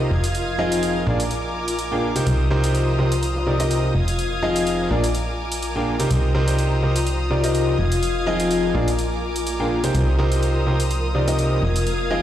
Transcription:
Already playing: F4 A#4 D#5
0.00 snare
0.11 F1 F5 D#6 G#6
0.24 closed hi-hat
0.35 closed hi-hat, shaker
0.59 F3 C4 D#4 F4 G#4 D#5
0.72 closed hi-hat
0.83 closed hi-hat
0.95 snare
1.07 A#1 A#2 D4 F4 G#4 A#4 D5 G#5 D6
1.20 closed hi-hat
1.31 closed hi-hat
1.68 closed hi-hat
1.79 closed hi-hat
1.92 A#2 D4 F4 G#4 A#4 G5, snare
2.16 C3 C4 D#4 G4 A#4 C5, closed hi-hat
2.27 C2 C5 A#5 D#6, closed hi-hat
2.51 C3 C4 D#4 G4 A#4 C5
2.60 D#5, closed hi-hat
2.75 closed hi-hat
2.99 C3 C4 D#4 G4 A#4 C5, snare
3.12 closed hi-hat
3.23 closed hi-hat
3.36 snare
3.47 C3 C4 D#4 G4 A#4 D5
3.60 C3 C4 D#4 G4 A#4 D#5, closed hi-hat
3.71 closed hi-hat
3.83 snare
3.95 F1 F4 F5 G#6
4.08 closed hi-hat
4.19 closed hi-hat, shaker
4.43 F3 C4 D#4 F4 G#4 D#5
4.56 closed hi-hat
4.67 closed hi-hat, shaker
4.79 snare
4.91 A#1 A#2 D4 F4 G#4 A#4 D5 G#5 D6
5.04 closed hi-hat
5.15 closed hi-hat
5.38 shaker
5.52 closed hi-hat
5.62 closed hi-hat, shaker
5.75 A#2 D4 F4 G#4 A#4 G5, snare
6.00 C3 C4 D#4 G4 A#4 C5, closed hi-hat
6.11 C2 C5 A#5 D#6, closed hi-hat
6.35 C3 C4 D#4 G4 A#4 C5
6.41 A#4
6.48 closed hi-hat
6.59 closed hi-hat
6.66 D#5
6.83 C3 C4 D#4 G4 A#4 C5
6.96 closed hi-hat
7.07 closed hi-hat, shaker
7.31 C3 C4 D#4 G4 A#4 D5
7.44 C3 C4 D#4 G4 A#4 D#5, closed hi-hat
7.55 closed hi-hat
7.67 snare
7.79 F1 F5 G#6, open hi-hat
7.92 closed hi-hat
8.03 closed hi-hat, shaker
8.27 F3 C4 D#4 F4 G#4 D#5
8.40 closed hi-hat
8.51 closed hi-hat, shaker
8.64 snare
8.75 A#1 A#2 D4 F4 G#4 A#4 D5 G#5 D6
8.88 closed hi-hat
8.99 closed hi-hat, shaker
9.22 shaker
9.36 closed hi-hat
9.46 closed hi-hat, shaker
9.60 A#2 D4 F4 G#4 A#4 G5, snare
9.84 C3 C4 D#4 G4 A#4 C5, closed hi-hat
9.95 C2 C5 A#5 D#6, closed hi-hat
10.16 C3 C4 D#4 G4 A#4 C5 D#5
10.32 closed hi-hat
10.43 closed hi-hat
10.67 C3 C4 D#4 G4 A#4 C5
10.80 closed hi-hat
10.90 closed hi-hat, shaker
11.15 C3 C4 D#4 G4 A#4 D5
11.28 C3 C4 D#4 G4 A#4 D#5, closed hi-hat
11.39 closed hi-hat, shaker
11.51 snare
11.63 F1 F5 G#6, open hi-hat
11.76 closed hi-hat
11.87 closed hi-hat, shaker
12.11 F3 C4 D#4 F4 G#4 D#5

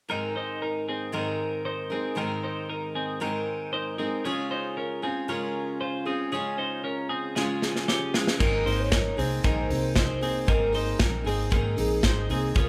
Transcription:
0.09 G#2 D#3 G#3 C4 D#4 A#4
0.36 D#4 C5
0.62 D#4 A#4
0.89 C4 G#4
1.12 G#2 D#3 G#3 C4 D#4 A#4
1.65 D#4 C5
1.90 G#3 C4 D#4 G#4 A#4
2.15 G#2 D#3 G#3 C4 D#4 A#4
2.44 D#4 C5
2.70 D#4 A#4
2.95 C4 G#4
3.20 G#2 D#3 G#3 C4 D#4 A#4
3.73 D#4 C5
3.98 G#3 C4 D#4 G#4 A#4
4.25 C#3 G#3 C#4 F4 G#4
4.51 D#4 C5
4.77 C#4 A#4
5.02 C4 C#4 F4 G#4
5.28 C#3 G#3 C#4 F4 G#4 A#4
5.81 F4 C5
6.05 C4 C#4 F4 G#4
6.32 C#3 G#3 C#4 F4 G#4
6.58 D#4 C5
6.84 C#4 A#4
7.09 C4 G#4
7.35 C#3 G#3 C#4 F4 G#4, snare
7.62 G#4, snare
7.76 snare
7.88 C#4 G4, snare
8.14 G#3 C#4 F4 G#4, snare
8.27 snare
8.39 G#1 G#2 D#3 A#3 C4 D#4 G#4 A#4, kick, crash
8.65 G#1 A#3 C4 D#4 G#4 C5, open hi-hat
8.79 C#5
8.91 A#3 C4 D#4 G#4 A#4, kick, snare, closed hi-hat
9.17 C2 A#3 C4 D#4 G#4 C5, open hi-hat
9.43 A#1 G#2 D#3 A#3 C4 D#4 G#4 A#4, kick, closed hi-hat
9.70 C2 A#3 C4 D#4 G#4, open hi-hat
9.95 A#3 C4 D#4 G#4 C5, kick, snare, closed hi-hat
10.21 A#3 C4 D#4 G#4, open hi-hat
10.47 G#1 G#2 D#3 A#3 C4 D#4 G#4 A#4, kick, closed hi-hat
10.73 A#3 C4 D#4 G#4 C5, open hi-hat
10.98 A#1 A#3 C4 D#4 G#4 A#4, kick, snare, closed hi-hat
11.24 G#1 A#3 C4 D#4 G#4, open hi-hat
11.50 G#2 D#3 A#3 C4 D#4 G#4 A#4, kick, closed hi-hat
11.77 A#1 A#3 C4 D#4 G#4, open hi-hat
12.02 G#1 A#3 C4 D#4 G#4 C5, kick, snare, closed hi-hat
12.29 C2 A#3 C4 D#4 G#4, open hi-hat
12.54 C#2 C#3 G#3 C#4 F4 G#4 A#4, kick, closed hi-hat

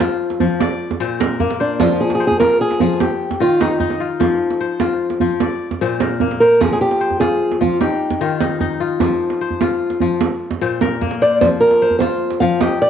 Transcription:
Already playing: F3 D#4 C5
0.00 F4, djembe slap, djembe tone
0.20 djembe slap
0.30 djembe slap
0.40 F3, djembe bass
0.60 D5, djembe slap, djembe tone
0.71 djembe slap
0.91 djembe slap, djembe bass
1.00 A#2 C5
1.20 A#4, djembe slap, djembe tone
1.30 djembe slap
1.40 A#3, djembe slap, djembe bass
1.50 djembe slap
1.60 D4 C5
1.80 F3 F4, djembe slap, djembe tone, djembe bass
2.00 G#4, djembe slap
2.10 djembe slap
2.15 G#4
2.20 C5
2.27 G#4, djembe slap, djembe bass
2.40 F4 A#4, djembe slap, djembe tone
2.60 G#4, djembe slap
2.71 djembe slap
2.80 F3 G#4, djembe bass
3.00 G4, djembe slap, djembe tone
3.11 djembe slap
3.31 djembe slap, djembe bass
3.40 D#3 F4
3.60 D#4, djembe slap, djembe tone
3.71 djembe slap
3.80 D#4, djembe slap, djembe bass
3.90 djembe slap
4.00 F4
4.20 F3, djembe slap, djembe tone, djembe bass
4.50 djembe slap
4.60 C5, djembe slap
4.80 F4, djembe slap, djembe tone
4.89 djembe slap
5.10 djembe slap
5.20 F3, djembe bass
5.40 D5, djembe slap, djembe tone
5.60 djembe slap
5.71 djembe slap, djembe bass
5.81 A#2 C5
6.00 A#4, djembe slap, djembe tone
6.20 A#3, djembe bass
6.31 djembe slap
6.40 A#4 C5
6.61 F3 G#4, djembe slap, djembe tone, djembe bass
6.72 G#4
6.81 G4, djembe slap
6.91 djembe slap
7.01 C5
7.11 djembe slap, djembe bass
7.20 F4 G#4, djembe slap, djembe tone
7.42 djembe slap
7.51 djembe slap
7.61 F3 F4, djembe bass
7.81 D#4 G4, djembe slap, djembe tone
7.91 djembe slap
8.10 djembe slap, djembe bass
8.21 D#3 F4
8.41 D#4, djembe slap, djembe tone
8.50 djembe slap
8.60 D#4, djembe slap, djembe bass
8.80 F4
9.00 F3, djembe slap, djembe tone, djembe bass
9.20 djembe slap
9.30 djembe slap
9.41 C5
9.51 djembe slap, djembe bass
9.61 F4, djembe slap, djembe tone
9.80 djembe slap
9.90 djembe slap
10.00 F3, djembe bass
10.21 djembe slap, djembe tone
10.31 djembe slap
10.51 djembe slap, djembe bass
10.61 A#2 C5
10.81 A#4, djembe slap, djembe tone
10.91 djembe slap
11.01 A#3, djembe slap, djembe bass
11.11 djembe slap
11.22 C5 D5
11.41 F3 C5, djembe slap, djembe tone, djembe bass
11.60 A#4, djembe slap
11.71 djembe slap
11.82 C5
11.91 djembe slap, djembe bass
11.99 F4 C5, djembe slap, djembe tone
12.20 djembe slap
12.30 djembe slap
12.40 F3 F5, djembe bass
12.60 G4 D#5, djembe slap, djembe tone
12.72 djembe slap
12.82 D5

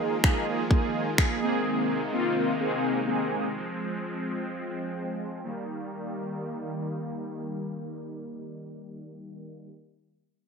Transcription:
Already playing: D#3 F3 G#3 A#3 D#4 F4 G#4
0.24 A#3 D#4 G#4, finger snap, kick
0.71 A#3 D#4 G#4, kick
1.18 A#3 D#4 G#4, finger snap, kick
1.42 C3 D#3 G#3 A#3 C4 D#4 G#4
2.12 A#3 C4 F4
2.60 A#3 C4 G#4
3.07 A#3 C4 G#4
3.54 F3 C4
5.43 D#3 G3 A#3

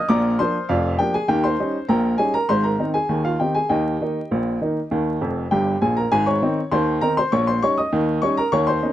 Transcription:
0.09 A#1 A#2 D5 A#5 D6
0.39 F3 A#3 D4 C5 C6
0.69 F1 F2 F4 D5 F5
0.99 F3 A#3 D4 G4 G5
1.14 G#4 G#5
1.28 D#2 D#3 G4 G5
1.44 C5 C6
1.59 G3 C#4 D#4
1.89 A#1 A#2 A#4 G5 A#5
2.18 G3 C#4 D#4 G#4 G#5
2.34 A#4 A#5
2.49 G#1 G#2 C5 C6
2.63 A#4 A#5
2.79 D#3 C4 D#4
2.94 G#4 G#5
3.09 D#2 D#3
3.25 F4 F5
3.40 D#3 C4 D#4 G4 G5
3.55 G#4 G#5
3.69 D#2 D#3 G4 D#5 G5
4.01 D#3 A#3 D#4
4.31 A#1 A#2
4.61 D#3 A#3 D#4
4.91 D#2 D#3
5.21 F1 F2
5.51 G1 G2 G4 G5
5.82 A#1 A#2 G#4 G#5
5.97 A#4 A#5
6.12 G#1 G#2 G#4 G#5
6.26 C#5 C#6
6.42 D#3 C4 D#4
6.72 D#2 D#3 C5 C6
7.01 D#3 C4 D#4 A#4 A#5
7.17 C5 C6
7.32 A#1 A#2 C#5 C#6
7.47 C5 C6
7.62 G3 C#4 D#4 C#5 C#6
7.78 D#5 D#6
7.92 D#2 D#3
8.22 G3 C#4 D#4 C#5 C#6
8.37 A#4 A#5
8.52 D#2 D#3 C#5 C#6
8.67 C5 C6
8.82 A#3 C#4 D#4

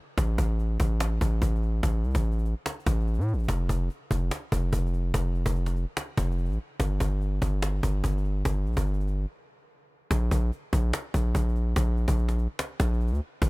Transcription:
0.18 A1, cajon bass
0.38 A1, cajon bass
0.59 cajon slap
0.80 A1, cajon bass
1.00 cajon slap
1.21 A1, cajon bass
1.42 A1, cajon bass
1.49 cajon slap
1.56 cajon slap
1.63 cajon slap
1.83 A1, cajon bass
2.04 C2, cajon slap
2.11 cajon slap
2.15 A1, cajon bass, cajon slap
2.25 cajon slap
2.31 cajon slap
2.38 cajon slap
2.45 cajon slap
2.66 cajon slap
2.73 cajon slap
2.80 cajon slap
2.86 A1, cajon bass, cajon slap
2.93 cajon slap
3.00 cajon slap
3.07 cajon slap
3.14 cajon slap
3.18 A2, cajon slap
3.28 cajon slap
3.33 A1, cajon slap
3.39 cajon slap
3.44 cajon slap
3.48 F1, cajon bass
3.69 F1, cajon bass
3.90 cajon slap
4.11 F1, cajon bass
4.31 cajon slap
4.52 F1, cajon bass
4.73 F1, cajon bass
4.80 cajon slap
4.86 cajon slap
4.93 cajon slap
5.14 F1, cajon bass
5.35 cajon slap
5.46 F1, cajon bass
5.56 cajon slap
5.66 cajon slap
5.76 cajon slap
5.97 cajon slap
6.17 F1, cajon bass, cajon slap
6.24 cajon slap
6.31 cajon slap
6.38 cajon slap
6.45 cajon slap
6.49 A1, cajon slap
6.52 cajon slap
6.80 G1, cajon bass
7.00 G1, cajon bass
7.21 cajon slap
7.42 G1, cajon bass
7.62 cajon slap
7.83 G1, cajon bass
8.04 G1, cajon bass
8.11 cajon slap
8.18 cajon slap
8.25 cajon slap
8.45 G1, cajon bass
8.66 A#1, cajon slap
8.73 cajon slap
8.77 G1, cajon bass, cajon slap
8.87 cajon slap
8.93 cajon slap
9.00 cajon slap
9.07 cajon slap
10.11 A#1, cajon bass
10.31 A#1, cajon bass
10.52 cajon slap
10.73 A#1, cajon bass
10.93 cajon slap
11.14 A#1, cajon bass
11.35 A#1, cajon bass
11.49 cajon slap
11.56 cajon slap
11.76 A#1, cajon bass
11.97 cajon slap
12.08 A#1, cajon bass
12.18 cajon slap
12.29 cajon slap
12.38 cajon slap
12.59 cajon slap
12.80 A#1, cajon bass, cajon slap
12.87 cajon slap
12.93 cajon slap
13.00 cajon slap
13.07 D2, cajon slap
13.11 cajon slap
13.14 cajon slap
13.42 A1, cajon bass

